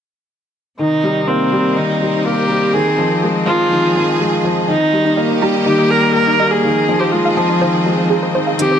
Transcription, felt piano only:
0.79 1.02 D#3 medium
1.03 1.17 G3 medium
1.28 1.51 A#3 medium
1.52 1.75 G3 medium
1.77 2.00 D#3 medium
2.01 2.24 G3 medium
2.25 2.48 A#3 medium
2.50 2.73 G3 medium
2.74 2.97 D#3 medium
2.98 3.12 F3 medium
3.23 3.46 G#3 medium
3.47 3.70 F3 medium
3.71 3.95 D#3 medium
3.95 4.19 F3 medium
4.20 4.43 G#3 medium
4.44 4.68 F3 medium
4.68 4.92 D#3 medium
4.93 5.07 G3 medium
5.17 5.41 A#3 medium
5.42 5.65 G3 medium
5.66 5.90 D#3 medium
5.91 6.14 G3 medium
6.15 6.39 A#3 medium
6.40 6.63 G3 medium
6.64 6.87 D#3 medium
6.89 7.03 F3 medium
7.13 7.36 G#3 medium
7.37 7.60 F3 medium
7.62 7.85 D#3 medium
7.86 8.09 G#3 medium
8.11 8.34 D#4 medium
8.35 8.58 D#4 medium
8.59 8.79 D#3 medium

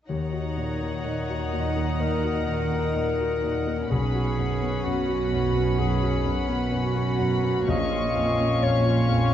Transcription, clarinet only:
0.08 2.02 C#5 medium
2.00 3.89 A#4 medium
3.90 4.86 G#4 medium
4.85 5.80 F#4 medium
5.79 6.45 G#4 medium
6.73 7.70 F#4 medium
7.69 8.64 D#5 medium
8.63 9.34 C#5 medium

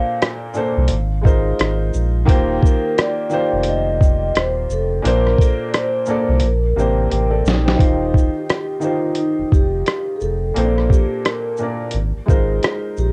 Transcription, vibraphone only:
0.00 0.18 F5 medium
2.58 2.63 C5 medium
2.64 2.99 A#4 medium
2.99 3.69 D5 loud
3.68 4.38 D#5 loud
4.38 4.72 C5 loud
4.72 5.03 A4 medium
5.07 5.41 A#4 medium
5.42 5.70 A4 medium
5.69 5.74 D5 medium
5.77 6.46 C5 medium
6.46 7.43 A#4 medium
7.49 8.39 D#4 medium
8.37 8.86 G4 medium
8.85 9.20 F4 medium
9.19 9.51 D#4 medium
9.53 10.12 G4 medium
10.16 10.21 G#4 medium
10.22 10.92 A4 medium
10.90 11.26 G4 medium
11.26 11.90 A#4 medium
12.99 13.12 G4 medium

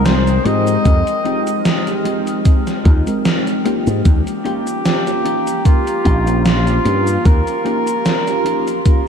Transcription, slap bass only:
0.00 0.38 C2 medium
0.45 0.76 G#2 medium
0.85 1.02 F2 loud
2.85 3.02 D#2 loud
3.87 4.01 G#2 medium
4.05 4.21 D#2 loud
6.06 6.78 A#1 medium
6.85 7.16 G2 medium
7.25 7.42 D#2 loud

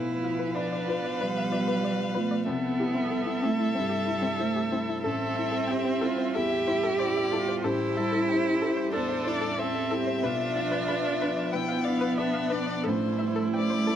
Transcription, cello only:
0.00 0.56 E4 medium
0.54 1.23 D4 medium
1.21 2.19 G3 medium
2.17 2.49 A3 medium
2.48 3.46 B3 medium
3.44 3.76 A3 medium
3.77 4.42 G3 medium
4.41 4.73 A3 medium
5.03 6.35 C4 medium
6.34 7.65 G4 loud
7.63 8.91 E4 medium
8.92 9.60 D4 medium
9.59 10.24 C4 medium
10.23 11.54 D4 medium
11.53 12.86 B3 medium
12.85 13.96 A3 medium

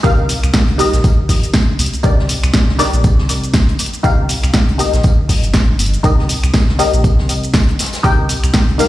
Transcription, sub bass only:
0.04 0.36 C2 medium
0.44 0.51 C2 loud
0.69 0.84 C2 medium
0.93 1.01 A#1 loud
1.79 1.89 C2 medium
2.04 2.36 C2 loud
2.44 2.51 C2 loud
2.68 2.84 C2 medium
2.93 3.06 A#1 loud
3.04 3.61 C2 loud
4.04 4.36 C2 loud
4.44 4.51 C2 loud
4.69 4.84 C2 medium
4.94 5.01 A#1 loud
5.44 5.59 G1 medium
5.69 5.76 A#1 medium
5.79 5.97 G1 loud
6.04 6.36 C2 loud
6.44 6.51 C2 loud
6.69 6.84 C2 medium
6.94 7.06 A#1 loud
7.04 7.61 C2 loud
8.04 8.36 C2 loud
8.44 8.51 C2 loud
8.69 8.84 C2 medium

